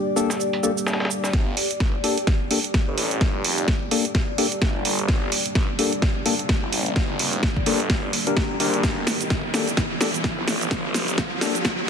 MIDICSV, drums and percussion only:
0, 0, Header, 1, 2, 480
1, 0, Start_track
1, 0, Key_signature, -2, "minor"
1, 0, Tempo, 468750
1, 1367, Time_signature, 4, 2, 24, 8
1, 12182, End_track
2, 0, Start_track
2, 0, Title_t, "Drums"
2, 166, Note_on_c, 9, 54, 65
2, 174, Note_on_c, 9, 82, 76
2, 269, Note_off_c, 9, 54, 0
2, 277, Note_off_c, 9, 82, 0
2, 307, Note_on_c, 9, 38, 48
2, 314, Note_on_c, 9, 82, 40
2, 406, Note_on_c, 9, 54, 82
2, 409, Note_off_c, 9, 38, 0
2, 414, Note_off_c, 9, 82, 0
2, 414, Note_on_c, 9, 82, 33
2, 509, Note_off_c, 9, 54, 0
2, 517, Note_off_c, 9, 82, 0
2, 546, Note_on_c, 9, 42, 38
2, 646, Note_on_c, 9, 54, 65
2, 649, Note_off_c, 9, 42, 0
2, 654, Note_on_c, 9, 82, 69
2, 749, Note_off_c, 9, 54, 0
2, 757, Note_off_c, 9, 82, 0
2, 795, Note_on_c, 9, 82, 42
2, 886, Note_on_c, 9, 38, 81
2, 886, Note_on_c, 9, 54, 63
2, 894, Note_off_c, 9, 82, 0
2, 894, Note_on_c, 9, 82, 31
2, 956, Note_off_c, 9, 38, 0
2, 956, Note_off_c, 9, 54, 0
2, 956, Note_on_c, 9, 38, 85
2, 956, Note_on_c, 9, 54, 65
2, 997, Note_off_c, 9, 82, 0
2, 1026, Note_off_c, 9, 38, 0
2, 1026, Note_off_c, 9, 54, 0
2, 1026, Note_on_c, 9, 38, 80
2, 1026, Note_on_c, 9, 54, 64
2, 1076, Note_off_c, 9, 38, 0
2, 1076, Note_off_c, 9, 54, 0
2, 1076, Note_on_c, 9, 38, 82
2, 1076, Note_on_c, 9, 54, 61
2, 1126, Note_off_c, 9, 54, 0
2, 1126, Note_on_c, 9, 54, 64
2, 1134, Note_on_c, 9, 82, 69
2, 1178, Note_off_c, 9, 38, 0
2, 1228, Note_off_c, 9, 54, 0
2, 1237, Note_off_c, 9, 82, 0
2, 1267, Note_on_c, 9, 38, 42
2, 1274, Note_on_c, 9, 82, 39
2, 1367, Note_off_c, 9, 38, 0
2, 1367, Note_on_c, 9, 36, 106
2, 1367, Note_on_c, 9, 38, 47
2, 1367, Note_on_c, 9, 42, 52
2, 1377, Note_off_c, 9, 82, 0
2, 1469, Note_off_c, 9, 36, 0
2, 1470, Note_off_c, 9, 38, 0
2, 1470, Note_off_c, 9, 42, 0
2, 1607, Note_on_c, 9, 46, 96
2, 1709, Note_off_c, 9, 46, 0
2, 1747, Note_on_c, 9, 42, 65
2, 1847, Note_on_c, 9, 36, 112
2, 1848, Note_off_c, 9, 42, 0
2, 1848, Note_on_c, 9, 38, 47
2, 1848, Note_on_c, 9, 42, 52
2, 1949, Note_off_c, 9, 36, 0
2, 1950, Note_off_c, 9, 38, 0
2, 1950, Note_off_c, 9, 42, 0
2, 2087, Note_on_c, 9, 46, 98
2, 2190, Note_off_c, 9, 46, 0
2, 2227, Note_on_c, 9, 42, 63
2, 2326, Note_off_c, 9, 42, 0
2, 2326, Note_on_c, 9, 38, 47
2, 2326, Note_on_c, 9, 42, 52
2, 2327, Note_on_c, 9, 36, 109
2, 2429, Note_off_c, 9, 36, 0
2, 2429, Note_off_c, 9, 38, 0
2, 2429, Note_off_c, 9, 42, 0
2, 2567, Note_on_c, 9, 46, 94
2, 2669, Note_off_c, 9, 46, 0
2, 2707, Note_on_c, 9, 42, 66
2, 2807, Note_off_c, 9, 42, 0
2, 2807, Note_on_c, 9, 36, 108
2, 2807, Note_on_c, 9, 38, 50
2, 2807, Note_on_c, 9, 42, 53
2, 2909, Note_off_c, 9, 36, 0
2, 2909, Note_off_c, 9, 38, 0
2, 2909, Note_off_c, 9, 42, 0
2, 3047, Note_on_c, 9, 46, 95
2, 3150, Note_off_c, 9, 46, 0
2, 3187, Note_on_c, 9, 42, 62
2, 3287, Note_off_c, 9, 42, 0
2, 3287, Note_on_c, 9, 36, 113
2, 3287, Note_on_c, 9, 38, 50
2, 3287, Note_on_c, 9, 42, 51
2, 3389, Note_off_c, 9, 36, 0
2, 3389, Note_off_c, 9, 38, 0
2, 3389, Note_off_c, 9, 42, 0
2, 3527, Note_on_c, 9, 46, 102
2, 3630, Note_off_c, 9, 46, 0
2, 3667, Note_on_c, 9, 42, 64
2, 3767, Note_off_c, 9, 42, 0
2, 3767, Note_on_c, 9, 36, 120
2, 3767, Note_on_c, 9, 38, 53
2, 3767, Note_on_c, 9, 42, 48
2, 3869, Note_off_c, 9, 36, 0
2, 3870, Note_off_c, 9, 38, 0
2, 3870, Note_off_c, 9, 42, 0
2, 4007, Note_on_c, 9, 46, 98
2, 4110, Note_off_c, 9, 46, 0
2, 4147, Note_on_c, 9, 42, 59
2, 4247, Note_off_c, 9, 42, 0
2, 4247, Note_on_c, 9, 36, 117
2, 4247, Note_on_c, 9, 38, 54
2, 4247, Note_on_c, 9, 42, 53
2, 4349, Note_off_c, 9, 36, 0
2, 4350, Note_off_c, 9, 38, 0
2, 4350, Note_off_c, 9, 42, 0
2, 4487, Note_on_c, 9, 46, 103
2, 4590, Note_off_c, 9, 46, 0
2, 4627, Note_on_c, 9, 42, 64
2, 4727, Note_on_c, 9, 36, 111
2, 4728, Note_off_c, 9, 42, 0
2, 4728, Note_on_c, 9, 38, 56
2, 4728, Note_on_c, 9, 42, 50
2, 4829, Note_off_c, 9, 36, 0
2, 4830, Note_off_c, 9, 38, 0
2, 4830, Note_off_c, 9, 42, 0
2, 4967, Note_on_c, 9, 46, 108
2, 5069, Note_off_c, 9, 46, 0
2, 5108, Note_on_c, 9, 42, 59
2, 5207, Note_off_c, 9, 42, 0
2, 5207, Note_on_c, 9, 36, 114
2, 5207, Note_on_c, 9, 38, 58
2, 5207, Note_on_c, 9, 42, 49
2, 5309, Note_off_c, 9, 36, 0
2, 5310, Note_off_c, 9, 38, 0
2, 5310, Note_off_c, 9, 42, 0
2, 5447, Note_on_c, 9, 46, 106
2, 5549, Note_off_c, 9, 46, 0
2, 5587, Note_on_c, 9, 42, 61
2, 5687, Note_off_c, 9, 42, 0
2, 5687, Note_on_c, 9, 36, 124
2, 5687, Note_on_c, 9, 38, 57
2, 5687, Note_on_c, 9, 42, 50
2, 5789, Note_off_c, 9, 36, 0
2, 5789, Note_off_c, 9, 38, 0
2, 5789, Note_off_c, 9, 42, 0
2, 5927, Note_on_c, 9, 46, 104
2, 6029, Note_off_c, 9, 46, 0
2, 6067, Note_on_c, 9, 42, 59
2, 6167, Note_off_c, 9, 42, 0
2, 6167, Note_on_c, 9, 36, 121
2, 6167, Note_on_c, 9, 38, 59
2, 6167, Note_on_c, 9, 42, 51
2, 6269, Note_off_c, 9, 36, 0
2, 6269, Note_off_c, 9, 38, 0
2, 6269, Note_off_c, 9, 42, 0
2, 6406, Note_on_c, 9, 46, 102
2, 6509, Note_off_c, 9, 46, 0
2, 6547, Note_on_c, 9, 42, 60
2, 6647, Note_off_c, 9, 42, 0
2, 6647, Note_on_c, 9, 36, 112
2, 6647, Note_on_c, 9, 38, 61
2, 6647, Note_on_c, 9, 42, 48
2, 6749, Note_off_c, 9, 36, 0
2, 6749, Note_off_c, 9, 38, 0
2, 6749, Note_off_c, 9, 42, 0
2, 6887, Note_on_c, 9, 46, 101
2, 6989, Note_off_c, 9, 46, 0
2, 7027, Note_on_c, 9, 42, 61
2, 7126, Note_off_c, 9, 42, 0
2, 7126, Note_on_c, 9, 38, 62
2, 7126, Note_on_c, 9, 42, 48
2, 7127, Note_on_c, 9, 36, 115
2, 7229, Note_off_c, 9, 36, 0
2, 7229, Note_off_c, 9, 38, 0
2, 7229, Note_off_c, 9, 42, 0
2, 7366, Note_on_c, 9, 46, 108
2, 7469, Note_off_c, 9, 46, 0
2, 7507, Note_on_c, 9, 42, 62
2, 7607, Note_off_c, 9, 42, 0
2, 7607, Note_on_c, 9, 36, 119
2, 7607, Note_on_c, 9, 38, 67
2, 7607, Note_on_c, 9, 42, 49
2, 7709, Note_off_c, 9, 36, 0
2, 7709, Note_off_c, 9, 38, 0
2, 7709, Note_off_c, 9, 42, 0
2, 7747, Note_on_c, 9, 36, 62
2, 7847, Note_on_c, 9, 46, 104
2, 7849, Note_off_c, 9, 36, 0
2, 7950, Note_off_c, 9, 46, 0
2, 7987, Note_on_c, 9, 42, 57
2, 8087, Note_off_c, 9, 42, 0
2, 8087, Note_on_c, 9, 36, 118
2, 8087, Note_on_c, 9, 38, 69
2, 8087, Note_on_c, 9, 42, 49
2, 8189, Note_off_c, 9, 36, 0
2, 8189, Note_off_c, 9, 38, 0
2, 8189, Note_off_c, 9, 42, 0
2, 8327, Note_on_c, 9, 46, 105
2, 8429, Note_off_c, 9, 46, 0
2, 8467, Note_on_c, 9, 42, 64
2, 8567, Note_off_c, 9, 42, 0
2, 8567, Note_on_c, 9, 36, 115
2, 8567, Note_on_c, 9, 38, 68
2, 8567, Note_on_c, 9, 42, 47
2, 8669, Note_off_c, 9, 36, 0
2, 8669, Note_off_c, 9, 38, 0
2, 8669, Note_off_c, 9, 42, 0
2, 8807, Note_on_c, 9, 46, 98
2, 8909, Note_off_c, 9, 46, 0
2, 8947, Note_on_c, 9, 42, 58
2, 9047, Note_off_c, 9, 42, 0
2, 9047, Note_on_c, 9, 36, 115
2, 9047, Note_on_c, 9, 38, 70
2, 9047, Note_on_c, 9, 42, 50
2, 9054, Note_on_c, 9, 82, 34
2, 9149, Note_off_c, 9, 36, 0
2, 9149, Note_off_c, 9, 38, 0
2, 9149, Note_off_c, 9, 42, 0
2, 9156, Note_off_c, 9, 82, 0
2, 9286, Note_on_c, 9, 38, 75
2, 9286, Note_on_c, 9, 46, 104
2, 9294, Note_on_c, 9, 82, 78
2, 9389, Note_off_c, 9, 38, 0
2, 9389, Note_off_c, 9, 46, 0
2, 9396, Note_off_c, 9, 82, 0
2, 9427, Note_on_c, 9, 42, 62
2, 9434, Note_on_c, 9, 82, 45
2, 9526, Note_off_c, 9, 42, 0
2, 9526, Note_on_c, 9, 38, 76
2, 9526, Note_on_c, 9, 42, 49
2, 9527, Note_on_c, 9, 36, 119
2, 9534, Note_off_c, 9, 82, 0
2, 9534, Note_on_c, 9, 82, 33
2, 9629, Note_off_c, 9, 36, 0
2, 9629, Note_off_c, 9, 38, 0
2, 9629, Note_off_c, 9, 42, 0
2, 9636, Note_off_c, 9, 82, 0
2, 9767, Note_on_c, 9, 38, 74
2, 9767, Note_on_c, 9, 46, 100
2, 9774, Note_on_c, 9, 82, 77
2, 9869, Note_off_c, 9, 38, 0
2, 9869, Note_off_c, 9, 46, 0
2, 9876, Note_off_c, 9, 82, 0
2, 9907, Note_on_c, 9, 42, 60
2, 9914, Note_on_c, 9, 82, 42
2, 10006, Note_off_c, 9, 42, 0
2, 10006, Note_on_c, 9, 38, 76
2, 10006, Note_on_c, 9, 42, 49
2, 10007, Note_on_c, 9, 36, 118
2, 10014, Note_off_c, 9, 82, 0
2, 10014, Note_on_c, 9, 82, 33
2, 10109, Note_off_c, 9, 36, 0
2, 10109, Note_off_c, 9, 38, 0
2, 10109, Note_off_c, 9, 42, 0
2, 10116, Note_off_c, 9, 82, 0
2, 10247, Note_on_c, 9, 38, 78
2, 10247, Note_on_c, 9, 46, 102
2, 10254, Note_on_c, 9, 82, 74
2, 10349, Note_off_c, 9, 38, 0
2, 10349, Note_off_c, 9, 46, 0
2, 10356, Note_off_c, 9, 82, 0
2, 10387, Note_on_c, 9, 42, 62
2, 10394, Note_on_c, 9, 82, 43
2, 10487, Note_off_c, 9, 42, 0
2, 10487, Note_on_c, 9, 36, 114
2, 10487, Note_on_c, 9, 38, 76
2, 10487, Note_on_c, 9, 42, 50
2, 10494, Note_off_c, 9, 82, 0
2, 10494, Note_on_c, 9, 82, 33
2, 10589, Note_off_c, 9, 36, 0
2, 10589, Note_off_c, 9, 38, 0
2, 10589, Note_off_c, 9, 42, 0
2, 10597, Note_off_c, 9, 82, 0
2, 10727, Note_on_c, 9, 38, 80
2, 10727, Note_on_c, 9, 46, 105
2, 10734, Note_on_c, 9, 82, 75
2, 10829, Note_off_c, 9, 38, 0
2, 10829, Note_off_c, 9, 46, 0
2, 10836, Note_off_c, 9, 82, 0
2, 10867, Note_on_c, 9, 42, 57
2, 10874, Note_on_c, 9, 82, 41
2, 10967, Note_off_c, 9, 42, 0
2, 10967, Note_on_c, 9, 36, 107
2, 10967, Note_on_c, 9, 38, 85
2, 10967, Note_on_c, 9, 42, 51
2, 10974, Note_off_c, 9, 82, 0
2, 10974, Note_on_c, 9, 82, 35
2, 11069, Note_off_c, 9, 36, 0
2, 11069, Note_off_c, 9, 38, 0
2, 11069, Note_off_c, 9, 42, 0
2, 11076, Note_off_c, 9, 82, 0
2, 11207, Note_on_c, 9, 38, 83
2, 11207, Note_on_c, 9, 46, 100
2, 11214, Note_on_c, 9, 82, 80
2, 11309, Note_off_c, 9, 38, 0
2, 11309, Note_off_c, 9, 46, 0
2, 11317, Note_off_c, 9, 82, 0
2, 11348, Note_on_c, 9, 42, 66
2, 11355, Note_on_c, 9, 82, 48
2, 11447, Note_off_c, 9, 42, 0
2, 11447, Note_on_c, 9, 36, 117
2, 11447, Note_on_c, 9, 38, 87
2, 11447, Note_on_c, 9, 42, 52
2, 11454, Note_off_c, 9, 82, 0
2, 11454, Note_on_c, 9, 82, 35
2, 11549, Note_off_c, 9, 36, 0
2, 11550, Note_off_c, 9, 38, 0
2, 11550, Note_off_c, 9, 42, 0
2, 11557, Note_off_c, 9, 82, 0
2, 11687, Note_on_c, 9, 38, 84
2, 11687, Note_on_c, 9, 46, 102
2, 11694, Note_on_c, 9, 82, 83
2, 11790, Note_off_c, 9, 38, 0
2, 11790, Note_off_c, 9, 46, 0
2, 11797, Note_off_c, 9, 82, 0
2, 11827, Note_on_c, 9, 42, 65
2, 11835, Note_on_c, 9, 82, 45
2, 11927, Note_off_c, 9, 42, 0
2, 11927, Note_on_c, 9, 36, 110
2, 11927, Note_on_c, 9, 38, 82
2, 11927, Note_on_c, 9, 42, 52
2, 11934, Note_off_c, 9, 82, 0
2, 11934, Note_on_c, 9, 82, 35
2, 12029, Note_off_c, 9, 36, 0
2, 12030, Note_off_c, 9, 38, 0
2, 12030, Note_off_c, 9, 42, 0
2, 12037, Note_off_c, 9, 82, 0
2, 12182, End_track
0, 0, End_of_file